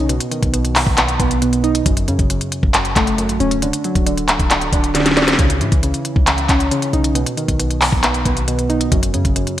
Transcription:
0.00 0.19 B1 loud
0.00 0.11 C#3 loud
0.00 0.11 E3 medium
0.00 0.12 C#4 medium
0.00 0.11 D#4 medium
0.09 0.52 B2 medium
0.09 closed hi-hat medium
0.20 closed hi-hat medium
0.31 1.42 D#3 medium
0.31 closed hi-hat medium
0.43 0.85 B1 loud
0.43 kick medium
0.43 closed hi-hat medium
0.53 0.96 B2 medium
0.53 closed hi-hat medium
0.65 closed hi-hat medium
0.76 clap loud
0.76 open hi-hat medium
0.87 1.18 B1 loud
0.87 kick loud
0.97 1.41 B2 medium
0.97 clap loud
0.97 closed hi-hat medium
1.08 closed hi-hat medium
1.20 1.83 B1 loud
1.20 1.86 B3 medium
1.20 kick loud
1.20 closed hi-hat medium
1.31 closed hi-hat medium
1.42 1.86 B2 medium
1.42 closed hi-hat medium
1.53 closed hi-hat medium
1.64 1.86 D#4 medium
1.64 closed hi-hat soft
1.75 closed hi-hat medium
1.86 2.09 F#1 loud
1.86 2.29 F#2 medium
1.86 kick loud
1.86 closed hi-hat medium
1.97 closed hi-hat medium
2.08 2.18 F#2 loud
2.08 3.18 C#3 medium
2.08 closed hi-hat medium
2.19 2.40 F#1 loud
2.19 kick medium
2.19 closed hi-hat medium
2.30 2.73 F#2 medium
2.30 closed hi-hat medium
2.41 closed hi-hat medium
2.52 closed hi-hat medium
2.63 2.95 F#1 loud
2.63 kick loud
2.74 3.17 F#2 medium
2.74 clap loud
2.74 closed hi-hat medium
2.85 closed hi-hat medium
2.96 3.31 F#1 loud
2.96 3.62 A3 medium
2.96 kick loud
2.96 clap loud
2.96 closed hi-hat medium
3.07 closed hi-hat medium
3.18 3.62 F#2 medium
3.18 closed hi-hat medium
3.29 3.40 A1 loud
3.29 closed hi-hat medium
3.40 3.72 D1 loud
3.40 3.62 C#4 medium
3.40 closed hi-hat soft
3.51 closed hi-hat medium
3.62 4.05 D3 medium
3.62 closed hi-hat medium
3.73 closed hi-hat medium
3.84 4.95 F#3 medium
3.84 closed hi-hat medium
3.95 4.38 D1 loud
3.95 kick medium
3.95 closed hi-hat medium
4.07 4.49 D3 medium
4.07 closed hi-hat medium
4.18 closed hi-hat medium
4.28 clap loud
4.28 closed hi-hat medium
4.28 open hi-hat medium
4.39 4.71 D1 loud
4.39 kick loud
4.39 closed hi-hat soft
4.51 4.94 D3 medium
4.51 clap loud
4.51 closed hi-hat medium
4.61 closed hi-hat medium
4.73 5.36 D1 loud
4.73 5.39 D4 medium
4.73 kick loud
4.73 closed hi-hat medium
4.84 closed hi-hat medium
4.95 5.39 D3 loud
4.95 snare medium
4.95 closed hi-hat medium
5.00 snare medium
5.06 snare medium
5.06 closed hi-hat medium
5.11 snare medium
5.17 5.39 D5 medium
5.17 snare medium
5.17 closed hi-hat soft
5.22 snare medium
5.28 snare loud
5.28 closed hi-hat medium
5.33 snare loud
5.39 5.62 C#2 loud
5.39 5.82 C#3 medium
5.39 kick loud
5.39 closed hi-hat medium
5.50 closed hi-hat medium
5.61 5.71 G#2 loud
5.61 6.71 E3 medium
5.61 closed hi-hat medium
5.72 5.93 C#2 loud
5.72 kick medium
5.72 closed hi-hat soft
5.83 6.26 C#3 medium
5.83 closed hi-hat medium
5.94 closed hi-hat medium
6.05 closed hi-hat medium
6.16 6.48 C#2 loud
6.16 kick medium
6.27 6.70 C#3 medium
6.27 clap loud
6.27 closed hi-hat medium
6.38 closed hi-hat medium
6.49 6.70 C#2 loud
6.49 7.15 C#4 medium
6.49 kick loud
6.49 clap loud
6.49 closed hi-hat medium
6.60 closed hi-hat medium
6.71 7.15 C#3 medium
6.71 closed hi-hat medium
6.82 closed hi-hat medium
6.93 7.25 B1 loud
6.93 7.15 D#4 medium
6.93 closed hi-hat soft
7.04 closed hi-hat medium
7.15 7.58 B2 medium
7.15 closed hi-hat medium
7.26 closed hi-hat medium
7.37 8.48 D#3 medium
7.37 closed hi-hat medium
7.48 7.91 B1 loud
7.48 kick medium
7.48 closed hi-hat medium
7.59 8.02 B2 medium
7.59 closed hi-hat medium
7.71 closed hi-hat medium
7.81 clap medium
7.81 open hi-hat medium
7.92 8.24 B1 loud
7.92 kick loud
8.03 8.46 B2 medium
8.03 clap loud
8.03 closed hi-hat medium
8.14 closed hi-hat medium
8.25 8.89 B1 loud
8.25 8.92 B3 medium
8.25 kick loud
8.25 closed hi-hat medium
8.37 closed hi-hat medium
8.48 8.92 B2 medium
8.48 closed hi-hat medium
8.59 closed hi-hat medium
8.69 8.92 D#4 medium
8.69 closed hi-hat soft
8.81 closed hi-hat medium
8.91 9.15 F#1 loud
8.91 9.34 F#2 medium
8.91 kick loud
8.91 closed hi-hat medium
9.03 closed hi-hat medium
9.14 9.24 F#2 loud
9.14 9.60 C#3 medium
9.14 closed hi-hat medium
9.25 9.46 F#1 loud
9.25 kick medium
9.25 closed hi-hat medium
9.36 9.60 F#2 medium
9.36 closed hi-hat medium
9.47 closed hi-hat medium

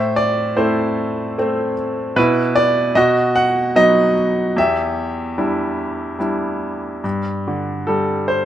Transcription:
0.00 2.13 A2 medium
0.00 0.55 C5 medium
0.00 0.18 E5 medium
0.16 0.54 D5 medium
0.57 1.35 A3 soft
0.57 1.35 C4 medium
0.57 1.73 E4 soft
0.57 1.73 C5 medium
1.38 2.15 A3 soft
1.38 2.15 C4 medium
2.16 2.94 B2 medium
2.16 2.93 E4 medium
2.16 2.57 B4 medium
2.56 2.97 D5 medium
2.95 4.53 B2 medium
2.95 4.13 F#4 medium
2.95 3.37 D#5 medium
3.36 3.77 F#5 medium
3.76 4.54 F#3 soft
3.76 4.54 B3 soft
3.76 4.54 D#4 soft
3.76 4.59 D#5 medium
4.56 7.00 E2 medium
4.56 6.16 G4 soft
4.56 6.16 E5 medium
5.38 6.17 G3 soft
5.38 6.17 D4 soft
5.38 6.17 E4 soft
6.19 7.01 G3 soft
6.19 7.02 D4 soft
6.19 7.02 E4 soft
7.04 8.45 G2 soft
7.48 8.45 D3 soft
7.87 8.45 G3 soft
7.87 8.26 A4 medium
8.28 8.45 C5 medium

